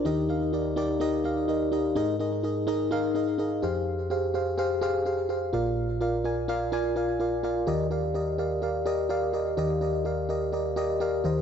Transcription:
<<
  \new Staff \with { instrumentName = "FM electric piano" } { \time 4/4 \key ees \major \tempo 4 = 126 <ees' g' bes' ees''>8 <ees' g' bes' f''>8 <ees' g' bes' d''>8 <ees' g' bes' d''>8 <ees' g' bes' ees''>8 <ees' g' bes' f''>8 <ees' g' bes' ees''>8 <ees' g' bes' ees''>8 | <ees' aes' bes' ees''>8 <ees' aes' bes' ees''>8 <ees' aes' bes' ees''>8 <ees' aes' bes' ees''>8 <ees' aes' bes' f''>8 <ees' aes' bes' ees''>8 <ees' aes' bes' ees''>8 <g' aes' c'' f''>8~ | <g' aes' c'' f''>8 <g' aes' c'' f''>8 <g' aes' c'' f''>8 <g' aes' c'' f''>8 <g' aes' c'' f''>8 <g' aes' c'' f''>8 <g' aes' c'' f''>8 <f' bes' d'' f''>8~ | <f' bes' d'' f''>8 <f' bes' d'' f''>8 <f' bes' d'' aes''>8 <f' bes' d'' f''>8 <f' bes' d'' aes''>8 <f' bes' d'' f''>8 <f' bes' d'' f''>8 <f' bes' d'' f''>8 |
<g' bes' d'' ees''>8 <g' bes' d'' f''>8 <g' bes' d'' ees''>8 <g' bes' d'' f''>8 <g' bes' d'' f''>8 <g' bes' d'' ees''>8 <g' bes' d'' f''>8 <g' bes' d'' ees''>8 | <g' bes' d'' ees''>8 <g' bes' d'' ees''>8 <g' bes' d'' f''>8 <g' bes' d'' ees''>8 <g' bes' d'' ees''>8 <g' bes' d'' ees''>8 <g' bes' d'' f''>8 <g' bes' c'' ees''>8 | }
  \new Staff \with { instrumentName = "FM electric piano" } { \clef bass \time 4/4 \key ees \major <ees, ees>1 | aes,2.~ aes,8 f,8~ | f,2.~ f,8 <bes,, bes,>8~ | <bes,, bes,>2.~ <bes,, bes,>8 r8 |
<ees, ees>1 | <ees, ees>2.~ <ees, ees>8 <ees, ees>8 | }
>>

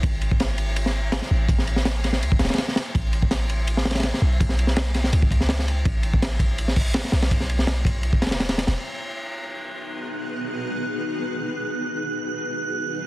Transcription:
<<
  \new Staff \with { instrumentName = "Synth texture" } { \time 4/4 \key gis \phrygian \tempo 4 = 165 r1 | r1 | r1 | r1 |
r1 | r1 | fis'''1~ | fis'''1~ |
fis'''1 | }
  \new Staff \with { instrumentName = "Ambient pad" } { \time 4/4 \key gis \phrygian r1 | r1 | r1 | r1 |
r1 | r1 | <b dis' fis' gis' b'>1~ | <b dis' fis' gis' b'>1 |
<b dis' fis' gis' b'>1 | }
  \new Staff \with { instrumentName = "808-style bass" } { \clef bass \time 4/4 \key gis \phrygian gis,,2.~ gis,,16 r16 a,,8~ | a,,2 dis,8 dis,,16 r4 r16 | a,,2.~ a,,16 r16 b,,8~ | b,,2 cis,2 |
a,,2.~ a,,16 r16 b,,8~ | b,,2~ b,,8 e,,4~ e,,16 e,,16 | r1 | r1 |
r1 | }
  \new DrumStaff \with { instrumentName = "Drums" } \drummode { \time 4/4 <bd cymr>8 cymr16 bd16 <cymr sn>8 cymr8 cymr16 sn8. <cymr sn>16 sn8. | <bd cymr>16 sn16 cymr16 sn16 <cymr sn>8 <cymr sn>16 sn16 cymr16 bd16 <cymr sn>32 <cymr sn>32 <cymr sn>32 <cymr sn>32 <cymr sn>16 sn16 <cymr sn>8 | <bd cymr>8 cymr16 bd16 <cymr sn>8 cymr8 cymr16 sn16 <cymr sn>32 <cymr sn>32 <cymr sn>32 <cymr sn>32 <cymr sn>16 sn8. | <bd cymr>16 sn16 cymr16 sn16 <cymr sn>8 <cymr sn>16 sn16 cymr16 bd16 <bd cymr>16 sn16 <cymr sn>16 sn16 cymr8 |
<bd cymr>8 cymr16 bd16 <cymr sn>8 <bd cymr>8 cymr16 sn16 <hho bd>8 <cymr sn>16 sn16 <cymr sn>16 <cymr sn>16 | <bd cymr>16 sn16 cymr16 sn16 <cymr sn>8 <bd cymr>8 cymr16 bd16 <cymr sn>32 <cymr sn>32 <cymr sn>16 <cymr sn>16 <cymr sn>16 <cymr sn>16 <cymr sn>16 | r4 r4 r4 r4 | r4 r4 r4 r4 |
r4 r4 r4 r4 | }
>>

